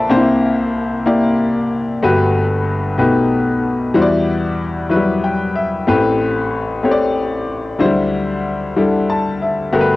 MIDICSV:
0, 0, Header, 1, 2, 480
1, 0, Start_track
1, 0, Tempo, 641026
1, 79, Time_signature, 6, 3, 24, 8
1, 7461, End_track
2, 0, Start_track
2, 0, Title_t, "Grand piano"
2, 0, Program_c, 0, 0
2, 0, Control_c, 0, 64, 127
2, 0, Note_on_c, 0, 34, 66
2, 0, Note_on_c, 0, 46, 68
2, 0, Note_on_c, 0, 58, 66
2, 0, Note_on_c, 0, 65, 61
2, 0, Note_on_c, 0, 69, 60
2, 0, Note_on_c, 0, 71, 60
2, 0, Note_on_c, 0, 72, 48
2, 0, Note_on_c, 0, 74, 51
2, 0, Note_on_c, 0, 76, 49
2, 0, Note_on_c, 0, 77, 58
2, 0, Note_on_c, 0, 79, 61
2, 0, Note_on_c, 0, 81, 58
2, 71, Note_off_c, 0, 58, 0
2, 71, Note_on_c, 0, 58, 79
2, 75, Note_on_c, 0, 62, 57
2, 77, Note_on_c, 0, 67, 70
2, 78, Note_on_c, 0, 36, 62
2, 78, Note_on_c, 0, 48, 65
2, 80, Note_off_c, 0, 72, 0
2, 80, Note_on_c, 0, 72, 90
2, 88, Control_c, 0, 64, 0
2, 91, Note_off_c, 0, 65, 0
2, 91, Note_off_c, 0, 79, 0
2, 92, Note_off_c, 0, 69, 0
2, 92, Note_off_c, 0, 71, 0
2, 94, Note_off_c, 0, 34, 0
2, 94, Note_off_c, 0, 46, 0
2, 94, Note_off_c, 0, 74, 0
2, 94, Note_off_c, 0, 77, 0
2, 122, Note_on_c, 0, 64, 76
2, 125, Note_off_c, 0, 62, 0
2, 189, Note_off_c, 0, 81, 0
2, 192, Note_off_c, 0, 76, 0
2, 222, Control_c, 0, 64, 127
2, 703, Note_off_c, 0, 58, 0
2, 706, Note_off_c, 0, 67, 0
2, 707, Note_off_c, 0, 72, 0
2, 728, Note_off_c, 0, 64, 0
2, 791, Note_on_c, 0, 58, 68
2, 792, Note_on_c, 0, 64, 56
2, 797, Note_on_c, 0, 67, 59
2, 800, Note_on_c, 0, 74, 70
2, 1423, Note_off_c, 0, 58, 0
2, 1424, Note_off_c, 0, 64, 0
2, 1426, Note_off_c, 0, 67, 0
2, 1428, Note_off_c, 0, 74, 0
2, 1490, Note_off_c, 0, 36, 0
2, 1490, Note_off_c, 0, 48, 0
2, 1515, Note_on_c, 0, 57, 75
2, 1516, Note_on_c, 0, 66, 66
2, 1520, Note_on_c, 0, 43, 56
2, 1521, Note_on_c, 0, 67, 66
2, 1522, Note_on_c, 0, 31, 59
2, 1525, Note_on_c, 0, 71, 77
2, 1531, Control_c, 0, 64, 0
2, 1667, Control_c, 0, 64, 127
2, 2145, Note_off_c, 0, 57, 0
2, 2146, Note_off_c, 0, 66, 0
2, 2148, Note_off_c, 0, 67, 0
2, 2150, Note_off_c, 0, 71, 0
2, 2211, Note_off_c, 0, 43, 0
2, 2212, Note_off_c, 0, 31, 0
2, 2230, Note_on_c, 0, 57, 62
2, 2230, Note_on_c, 0, 63, 58
2, 2234, Note_on_c, 0, 47, 58
2, 2235, Note_on_c, 0, 35, 56
2, 2237, Note_on_c, 0, 67, 56
2, 2239, Note_on_c, 0, 71, 69
2, 2250, Control_c, 0, 64, 0
2, 2392, Control_c, 0, 64, 127
2, 2863, Note_off_c, 0, 57, 0
2, 2863, Note_off_c, 0, 63, 0
2, 2866, Note_off_c, 0, 67, 0
2, 2867, Note_off_c, 0, 71, 0
2, 2928, Note_off_c, 0, 47, 0
2, 2929, Note_off_c, 0, 35, 0
2, 2952, Note_on_c, 0, 55, 77
2, 2955, Note_on_c, 0, 52, 61
2, 2956, Note_on_c, 0, 64, 67
2, 2958, Note_on_c, 0, 40, 64
2, 2958, Note_on_c, 0, 66, 71
2, 2958, Note_on_c, 0, 72, 65
2, 2972, Control_c, 0, 64, 0
2, 3008, Note_off_c, 0, 72, 0
2, 3008, Note_on_c, 0, 74, 82
2, 3104, Control_c, 0, 64, 127
2, 3584, Note_off_c, 0, 55, 0
2, 3586, Note_off_c, 0, 64, 0
2, 3587, Note_off_c, 0, 66, 0
2, 3612, Note_off_c, 0, 74, 0
2, 3666, Note_on_c, 0, 54, 61
2, 3669, Note_on_c, 0, 64, 58
2, 3678, Note_on_c, 0, 71, 72
2, 3716, Note_on_c, 0, 55, 61
2, 3923, Note_on_c, 0, 79, 59
2, 4146, Note_off_c, 0, 79, 0
2, 4160, Note_on_c, 0, 76, 57
2, 4302, Note_off_c, 0, 64, 0
2, 4305, Note_off_c, 0, 54, 0
2, 4306, Note_off_c, 0, 71, 0
2, 4325, Note_off_c, 0, 55, 0
2, 4368, Note_off_c, 0, 52, 0
2, 4370, Note_off_c, 0, 40, 0
2, 4384, Note_off_c, 0, 76, 0
2, 4395, Note_on_c, 0, 57, 80
2, 4400, Note_on_c, 0, 45, 63
2, 4400, Note_on_c, 0, 60, 73
2, 4402, Note_on_c, 0, 67, 71
2, 4406, Note_on_c, 0, 33, 64
2, 4408, Note_on_c, 0, 71, 86
2, 4410, Control_c, 0, 64, 0
2, 4525, Control_c, 0, 64, 127
2, 5025, Note_off_c, 0, 57, 0
2, 5028, Note_off_c, 0, 60, 0
2, 5028, Note_off_c, 0, 67, 0
2, 5031, Note_off_c, 0, 71, 0
2, 5114, Note_on_c, 0, 57, 66
2, 5121, Note_on_c, 0, 60, 62
2, 5126, Note_on_c, 0, 67, 59
2, 5128, Note_on_c, 0, 73, 57
2, 5173, Note_off_c, 0, 73, 0
2, 5177, Note_on_c, 0, 74, 73
2, 5744, Note_off_c, 0, 57, 0
2, 5748, Note_off_c, 0, 60, 0
2, 5750, Note_off_c, 0, 67, 0
2, 5776, Note_off_c, 0, 74, 0
2, 5810, Note_off_c, 0, 45, 0
2, 5813, Note_off_c, 0, 33, 0
2, 5832, Note_on_c, 0, 54, 61
2, 5837, Note_on_c, 0, 62, 67
2, 5840, Note_on_c, 0, 38, 62
2, 5840, Note_on_c, 0, 64, 68
2, 5841, Note_on_c, 0, 50, 61
2, 5845, Note_on_c, 0, 72, 83
2, 5852, Control_c, 0, 64, 0
2, 5881, Note_on_c, 0, 55, 75
2, 5885, Note_off_c, 0, 54, 0
2, 5992, Control_c, 0, 64, 127
2, 6465, Note_off_c, 0, 62, 0
2, 6467, Note_off_c, 0, 64, 0
2, 6469, Note_off_c, 0, 72, 0
2, 6487, Note_off_c, 0, 55, 0
2, 6563, Note_on_c, 0, 55, 62
2, 6566, Note_on_c, 0, 62, 58
2, 6569, Note_on_c, 0, 64, 58
2, 6574, Note_on_c, 0, 69, 69
2, 6812, Note_on_c, 0, 81, 57
2, 7030, Note_off_c, 0, 81, 0
2, 7053, Note_on_c, 0, 76, 52
2, 7188, Note_off_c, 0, 55, 0
2, 7190, Note_off_c, 0, 62, 0
2, 7191, Note_off_c, 0, 64, 0
2, 7193, Note_off_c, 0, 69, 0
2, 7249, Note_off_c, 0, 38, 0
2, 7250, Note_off_c, 0, 50, 0
2, 7270, Note_off_c, 0, 76, 0
2, 7282, Note_on_c, 0, 57, 76
2, 7283, Note_on_c, 0, 66, 71
2, 7286, Note_on_c, 0, 31, 61
2, 7286, Note_on_c, 0, 43, 60
2, 7286, Note_on_c, 0, 67, 69
2, 7290, Control_c, 0, 64, 0
2, 7292, Note_on_c, 0, 70, 67
2, 7334, Note_off_c, 0, 70, 0
2, 7344, Note_on_c, 0, 71, 83
2, 7414, Control_c, 0, 64, 127
2, 7461, Note_off_c, 0, 31, 0
2, 7461, Note_off_c, 0, 43, 0
2, 7461, Note_off_c, 0, 57, 0
2, 7461, Note_off_c, 0, 66, 0
2, 7461, Note_off_c, 0, 67, 0
2, 7461, Note_off_c, 0, 71, 0
2, 7461, End_track
0, 0, End_of_file